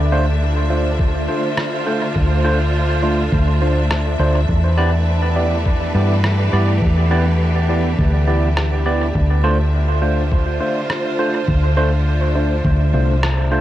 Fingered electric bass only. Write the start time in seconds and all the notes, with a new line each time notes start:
Already playing: D2
2.16 D2
3.32 D2
4.19 D2
4.49 E2
5.95 G2
6.53 G2
6.82 E2
7.99 D2
9.15 D2
11.48 D2
12.65 D2
12.94 C2